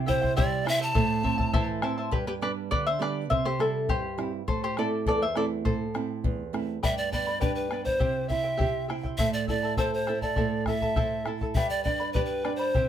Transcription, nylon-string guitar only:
Already playing: C3
0.08 E4
0.38 G3
0.67 E4
0.95 A2
1.23 C4
1.54 E3
1.83 C4
2.11 G2
2.42 G3 B3 D4
2.71 D3
2.99 G3 B3 D4
3.30 C3
3.59 G3 C4 E4
3.89 G2
4.18 G3 C4 E4
4.48 A2
4.77 A3 C4 E4
5.06 E2
5.36 A3 C4 E4
5.66 A2
5.94 A3 C4 E4
6.24 E2
6.53 A3 C4 E4
6.83 G2
7.12 B3
7.42 D4
7.71 B3
8.01 C3
8.31 E4
8.61 G4
8.90 E4
9.19 A2
9.50 E4
9.80 A4
10.10 E4
10.38 A2
10.67 E4
10.97 A4
11.26 E4
11.56 G2
11.85 D4
12.16 G4
12.45 D4
12.74 C3

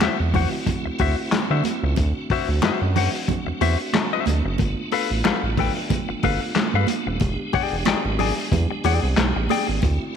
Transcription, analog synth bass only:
0.01 E2
0.20 E2
0.85 D2
1.00 D2
1.50 D3
1.83 C#2
1.97 D2
2.48 D2
2.63 F#2
2.81 F#2
3.47 E2
3.61 E2
4.27 D2
4.45 F#1
4.59 G1
5.11 A1
5.25 A1
5.43 A1
6.08 G1
6.23 G1
6.74 G2
7.07 D#1
7.21 E1
7.72 E1
7.87 G#1
8.05 G#1
8.52 E2
8.84 E2
9.03 C2
9.17 B1
9.36 A1
9.68 G#1
9.83 D2

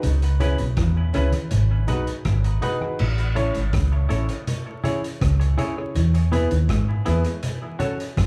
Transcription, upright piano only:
0.40 C#4 E4 G#4 B4
1.13 C#4 E4 G#4 B4
1.33 G#4 B4
1.87 D#4 F#4 G#4 B4
2.61 D#4 F#4 G#4 B4
2.80 D#4 F#4 G#4 B4
3.35 C#4 E4 A4 C#5
4.09 C#4 E4 A4 C#5
4.29 A4 C#5
4.83 C#4 E4 G#4 C#5
5.57 C#4 E4 G#4 C#5
5.77 C#4 E4 G#4 C#5
6.31 B3 E4 G#4 B4
7.05 B3 E4 G#4 B4
7.24 G#4 B4
7.79 C#4 F#4 A4 C#5

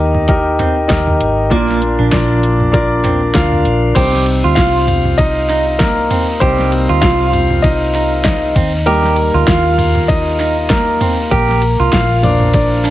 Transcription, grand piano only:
Already playing: D#3 D#4 G4 A#4 D#5
0.28 D#4 G4 A#4 D#5
0.88 D#4 G4 A#4 D#5
1.50 A#2 D4 F4 A#4 D5
2.12 D4 F4 A#4 D5
2.72 D4 F4 A#4 D5
3.34 D4 F4 A#4 F5
3.95 G3 C4 D#4 C5
4.55 F4 F5
5.18 D#4 D#5
5.79 A#3 A#4
6.40 G3 C4 D#4 C5
7.01 F4 F5
7.62 D#4 D#5
8.24 D#4 D#5
8.86 G3 A#3 D#4 A#4
9.47 F4 F5
10.08 D#4 D#5
10.70 A#3 A#4
11.31 A#3 A#4
11.93 F4 F5
12.23 F3 A#3 D4 D5
12.54 D4 D5

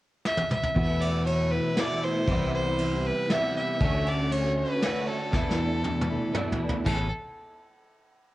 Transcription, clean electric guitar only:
0.75 E2 B2 E3 A3 B3
0.79 E4
1.76 E2 B2 E3 A3 B3
1.80 E4
2.28 C3 E3 G3 B3
2.32 E4
3.30 C3 E3 G3 B3
3.34 E4
3.81 D3 A3 C#4 F#4
4.81 D3 A3 C#4 F#4
5.31 E2 B2 E3 A3 D4
5.36 E4
6.33 E2 B2 E3 A3 D4 E4
6.85 A2 E3 B3 C#4 G#4

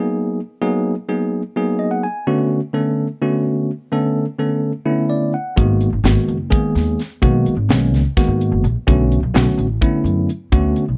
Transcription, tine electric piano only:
Already playing: F#3 A#3 B3 D#4 G#4
0.62 F#3 A#3 B3 D#4 G#4
1.09 F#3 A#3 B3 D#4 G#4
1.56 F#3 A#3 B3 D#4 G#4
1.79 D#5
1.91 F#5
2.04 G#5
2.27 D3 A3 B3 C#4 F#4
2.74 D3 A3 B3 C#4 A4
3.22 D3 A3 B3 C#4 F#4
3.92 D3 A3 B3 C#4 A4
4.39 D3 A3 B3 C#4 A4
4.86 D3 A3 B3 C#4 E4
5.10 D5
5.34 F#5
5.56 D#3 G#3 A#3 B3 F#4
6.04 D#3 G#3 A#3 B3 F#4
6.50 D#3 G#3 A#3 B3 G#4
7.22 D#3 G#3 A#3 B3 F#4
7.70 D#3 G#3 A#3 B3 C#4
8.17 D#3 G#3 A#3 B3 F#4
8.87 D3 A3 B3 C#4 F#4
9.34 D3 A3 B3 C#4 F#4
9.81 D3 A3 B3 C#4 E4
10.52 D3 A3 B3 C#4 F#4

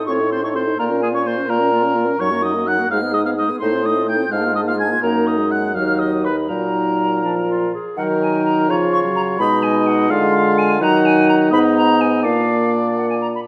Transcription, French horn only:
Already playing: D#4
0.09 C4
0.20 D#4
0.31 C4
0.43 D#4
0.54 C4
0.66 D#4
0.77 A#3
0.89 C#4
1.02 A#3
1.14 C#4
1.25 A#3
1.37 C#4
1.49 A#3
1.60 C#4
1.72 A#3
1.83 C#4
1.95 A#3
2.07 C#4
2.19 F#3
2.31 A#3
2.42 F#3
2.55 A#3
2.66 F#3
2.79 A#3
2.89 G#3
3.02 B3
3.13 G#3
3.25 B3
3.37 G#3
3.49 B3
3.61 A3
3.72 C4
3.84 A3
3.94 C4
4.05 A3
4.17 C4
4.29 G#3
4.41 A#3
4.52 G#3
4.63 A#3
4.75 G#3
4.87 A#3
5.00 A#3
5.38 G#3
5.75 F#3
6.48 F#3
7.23 F3
7.98 F#3
8.69 F3
9.05 F#3
9.39 G#3
10.10 G#3
10.81 F#3
11.52 B3
12.24 A#3

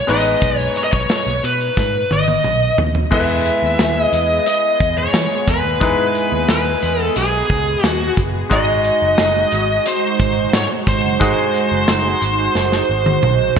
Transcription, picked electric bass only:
0.09 A1
0.42 B1
0.93 B1
1.27 B1
1.43 B2
1.77 G#2
2.11 G#1
2.45 B1
2.78 D#2
3.12 E2
3.63 D#2
3.79 D#2
4.13 E2
4.81 E2
5.14 E3
5.48 E2
5.64 D#2
5.81 E2
6.32 D#2
6.49 D#2
6.83 E2
7.17 B1
7.50 C#2
7.84 D#2
8.17 F#1
8.51 G#1
9.02 F#1
9.19 F#1
9.53 G#1
10.20 G#1
10.54 G#2
10.87 G#1
11.04 F#1
11.21 G#1
11.72 F#1
11.88 F#1
12.22 G#1
12.56 F#1
12.89 G#1
13.23 B1

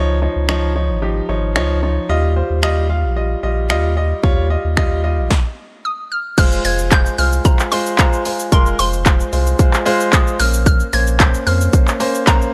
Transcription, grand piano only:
Already playing: F3 D#4 C#5
0.22 F3 D#4 C#5
0.48 F3 D#4 C#5
0.76 F3 D#4 C#5
1.02 F3 D#4 G4
1.29 F3 D#4 C#5
1.56 F3 D#4 C#5
1.83 F3 D#4 C#5
2.09 G3 F4 D#5
2.36 G3 F4 C5
2.62 G3 F4 D#5
2.89 G3 F4 F5
3.16 G3 F4 D#5
3.43 G3 F4 D#5
3.70 G3 F4 D#5
3.96 G3 F4 D#5
4.23 G3 F4 C#5
4.50 G3 F4 D#5
4.77 G3 F4 D#5
5.04 G3 F4 D#5
6.38 G#3 F4 C5
6.65 G#3 F4 C5
6.91 G#3 F4 C5
7.18 G#3 F4 C5
7.45 G#3 F4 C5
7.72 G#3 F4 C5
7.99 G#3 F4 C5
8.26 G#3 F4 C5
8.53 G#3 F4 A#4
8.79 G#3 F4 C5
9.06 G#3 F4 C5
9.33 G#3 F4 C5
9.59 G#3 F4 C5
9.85 G#3 F4 C5
10.12 G#3 F4 C5
10.39 A#3 C#4 C5
10.93 A#3 C#4 C5
11.20 A#3 C#4 C5
11.46 A#3 C#4 C5
11.73 A#3 C#4 C5
12.00 A#3 C#4 C5
12.27 A#3 C#4 C5

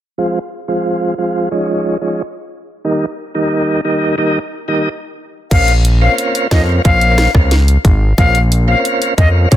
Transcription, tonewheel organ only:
0.18 F3 G#3 C4 F4
0.68 F3 G#3 C4 F4
1.18 F3 G#3 C4 F4
1.51 F3 G#3 C#4 D#4
2.01 F3 G#3 C#4 D#4
2.85 D#3 G3 A#3 D#4
3.35 D#3 G3 A#3 D#4
3.85 D#3 G3 A#3 D#4
4.18 D#3 G3 A#3 D#4
4.68 D#3 G3 A#3 D#4
5.51 A#3 C4 C#4 F4
6.01 A#3 C4 C#4 F4
6.51 A#3 C4 C#4 F4
6.84 A#3 C4 C#4 F4
7.34 A#3 C4 C#4 F4
8.18 A#3 C4 C#4 F4
8.68 A#3 C4 C#4 F4
9.18 A#3 C4 C#4 F4
9.51 A#3 C4 C#4 F4

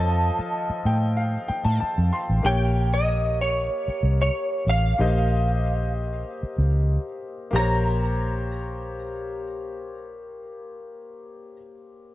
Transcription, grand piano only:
Already playing: F3 F4 A4 D#5
0.86 G5
1.17 F5
1.48 G5
1.65 A5
1.80 A5
2.13 C6
2.43 A#3 G4 A#4 C#5
4.98 A#3 G4 C5 D#5
7.51 A#3 G4
7.55 C5 C#5

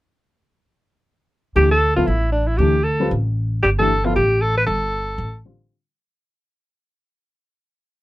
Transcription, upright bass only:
1.56 D2
1.97 C#2
2.07 A1
2.59 D2
3.11 A1
3.64 G1
4.16 A1
4.67 G1
5.18 A1

